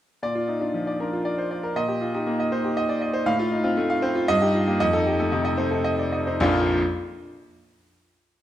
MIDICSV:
0, 0, Header, 1, 2, 480
1, 0, Start_track
1, 0, Key_signature, -2, "major"
1, 0, Tempo, 508044
1, 216, Time_signature, 3, 2, 24, 8
1, 4533, Tempo, 537153
1, 7772, End_track
2, 0, Start_track
2, 0, Title_t, "Grand piano"
2, 0, Program_c, 0, 0
2, 213, Note_on_c, 0, 46, 58
2, 216, Note_on_c, 0, 74, 79
2, 332, Note_on_c, 0, 65, 53
2, 406, Control_c, 0, 64, 127
2, 411, Note_off_c, 0, 74, 0
2, 452, Note_on_c, 0, 63, 47
2, 529, Note_off_c, 0, 65, 0
2, 574, Note_on_c, 0, 65, 46
2, 576, Note_on_c, 0, 62, 49
2, 577, Note_off_c, 0, 63, 0
2, 700, Note_on_c, 0, 53, 53
2, 772, Note_off_c, 0, 65, 0
2, 773, Note_off_c, 0, 62, 0
2, 823, Note_on_c, 0, 74, 56
2, 896, Note_off_c, 0, 53, 0
2, 944, Note_on_c, 0, 62, 47
2, 947, Note_on_c, 0, 70, 54
2, 1017, Note_off_c, 0, 74, 0
2, 1069, Note_on_c, 0, 65, 50
2, 1138, Note_off_c, 0, 62, 0
2, 1139, Note_off_c, 0, 70, 0
2, 1181, Note_on_c, 0, 74, 67
2, 1260, Note_off_c, 0, 65, 0
2, 1304, Note_on_c, 0, 72, 53
2, 1375, Note_off_c, 0, 74, 0
2, 1424, Note_off_c, 0, 72, 0
2, 1425, Note_on_c, 0, 74, 53
2, 1542, Note_on_c, 0, 70, 61
2, 1616, Note_off_c, 0, 74, 0
2, 1624, Note_off_c, 0, 46, 0
2, 1662, Note_off_c, 0, 70, 0
2, 1664, Note_on_c, 0, 46, 74
2, 1664, Note_on_c, 0, 75, 88
2, 1678, Control_c, 0, 64, 0
2, 1777, Note_on_c, 0, 67, 60
2, 1825, Control_c, 0, 64, 127
2, 1854, Note_off_c, 0, 75, 0
2, 1902, Note_on_c, 0, 65, 52
2, 1969, Note_off_c, 0, 67, 0
2, 2020, Note_off_c, 0, 65, 0
2, 2025, Note_on_c, 0, 67, 62
2, 2026, Note_on_c, 0, 63, 59
2, 2142, Note_on_c, 0, 58, 69
2, 2212, Note_off_c, 0, 67, 0
2, 2213, Note_off_c, 0, 63, 0
2, 2265, Note_on_c, 0, 75, 68
2, 2330, Note_off_c, 0, 58, 0
2, 2379, Note_on_c, 0, 63, 67
2, 2381, Note_on_c, 0, 72, 72
2, 2450, Note_off_c, 0, 75, 0
2, 2498, Note_on_c, 0, 67, 65
2, 2566, Note_off_c, 0, 63, 0
2, 2567, Note_off_c, 0, 72, 0
2, 2615, Note_on_c, 0, 75, 85
2, 2684, Note_off_c, 0, 67, 0
2, 2730, Note_on_c, 0, 74, 63
2, 2802, Note_off_c, 0, 75, 0
2, 2848, Note_off_c, 0, 74, 0
2, 2849, Note_on_c, 0, 75, 66
2, 2962, Note_on_c, 0, 72, 79
2, 3038, Note_off_c, 0, 75, 0
2, 3047, Note_off_c, 0, 46, 0
2, 3081, Note_on_c, 0, 45, 92
2, 3082, Note_off_c, 0, 72, 0
2, 3082, Note_on_c, 0, 77, 106
2, 3101, Control_c, 0, 64, 0
2, 3204, Note_on_c, 0, 65, 84
2, 3257, Control_c, 0, 64, 127
2, 3273, Note_off_c, 0, 77, 0
2, 3324, Note_on_c, 0, 63, 68
2, 3394, Note_off_c, 0, 65, 0
2, 3437, Note_on_c, 0, 65, 77
2, 3440, Note_on_c, 0, 60, 67
2, 3442, Note_off_c, 0, 63, 0
2, 3562, Note_on_c, 0, 57, 79
2, 3631, Note_off_c, 0, 65, 0
2, 3633, Note_off_c, 0, 60, 0
2, 3682, Note_on_c, 0, 77, 83
2, 3755, Note_off_c, 0, 57, 0
2, 3801, Note_on_c, 0, 60, 79
2, 3801, Note_on_c, 0, 72, 86
2, 3876, Note_off_c, 0, 77, 0
2, 3923, Note_on_c, 0, 65, 75
2, 3996, Note_off_c, 0, 60, 0
2, 3996, Note_off_c, 0, 72, 0
2, 4015, Note_off_c, 0, 45, 0
2, 4045, Note_off_c, 0, 65, 0
2, 4046, Note_on_c, 0, 75, 124
2, 4048, Note_on_c, 0, 43, 101
2, 4061, Control_c, 0, 64, 0
2, 4172, Note_on_c, 0, 67, 73
2, 4173, Note_on_c, 0, 63, 70
2, 4240, Note_off_c, 0, 75, 0
2, 4242, Control_c, 0, 64, 127
2, 4294, Note_on_c, 0, 65, 65
2, 4364, Note_off_c, 0, 63, 0
2, 4364, Note_off_c, 0, 67, 0
2, 4413, Note_off_c, 0, 65, 0
2, 4415, Note_on_c, 0, 58, 65
2, 4417, Note_on_c, 0, 67, 75
2, 4519, Note_off_c, 0, 43, 0
2, 4534, Note_off_c, 0, 58, 0
2, 4535, Note_off_c, 0, 67, 0
2, 4537, Note_on_c, 0, 75, 105
2, 4538, Note_on_c, 0, 41, 90
2, 4551, Control_c, 0, 64, 0
2, 4653, Note_on_c, 0, 63, 80
2, 4653, Note_on_c, 0, 69, 74
2, 4715, Control_c, 0, 64, 127
2, 4721, Note_off_c, 0, 75, 0
2, 4772, Note_on_c, 0, 67, 73
2, 4838, Note_off_c, 0, 63, 0
2, 4838, Note_off_c, 0, 69, 0
2, 4886, Note_off_c, 0, 67, 0
2, 4888, Note_on_c, 0, 57, 69
2, 4888, Note_on_c, 0, 69, 76
2, 4999, Note_on_c, 0, 63, 74
2, 5000, Note_on_c, 0, 48, 73
2, 5074, Note_off_c, 0, 57, 0
2, 5075, Note_off_c, 0, 69, 0
2, 5113, Note_on_c, 0, 75, 77
2, 5190, Note_off_c, 0, 48, 0
2, 5190, Note_off_c, 0, 63, 0
2, 5228, Note_on_c, 0, 72, 71
2, 5230, Note_on_c, 0, 57, 63
2, 5308, Note_off_c, 0, 75, 0
2, 5351, Note_on_c, 0, 69, 67
2, 5353, Note_on_c, 0, 63, 64
2, 5427, Note_off_c, 0, 72, 0
2, 5428, Note_off_c, 0, 57, 0
2, 5468, Note_on_c, 0, 75, 82
2, 5551, Note_off_c, 0, 69, 0
2, 5552, Note_off_c, 0, 63, 0
2, 5597, Note_on_c, 0, 74, 52
2, 5673, Note_off_c, 0, 75, 0
2, 5718, Note_on_c, 0, 75, 60
2, 5725, Note_off_c, 0, 74, 0
2, 5847, Note_on_c, 0, 72, 63
2, 5848, Note_on_c, 0, 63, 59
2, 5921, Note_off_c, 0, 75, 0
2, 5941, Note_off_c, 0, 41, 0
2, 5967, Note_on_c, 0, 34, 111
2, 5970, Note_on_c, 0, 41, 87
2, 5971, Note_off_c, 0, 63, 0
2, 5971, Note_off_c, 0, 72, 0
2, 5971, Note_on_c, 0, 53, 95
2, 5973, Note_on_c, 0, 58, 92
2, 5978, Note_on_c, 0, 62, 90
2, 5980, Note_on_c, 0, 65, 98
2, 5994, Control_c, 0, 64, 0
2, 6125, Control_c, 0, 64, 127
2, 6237, Note_off_c, 0, 34, 0
2, 6238, Note_off_c, 0, 41, 0
2, 6239, Note_off_c, 0, 53, 0
2, 6240, Note_off_c, 0, 58, 0
2, 6243, Note_off_c, 0, 62, 0
2, 6244, Note_off_c, 0, 65, 0
2, 6327, Control_c, 0, 64, 0
2, 7772, End_track
0, 0, End_of_file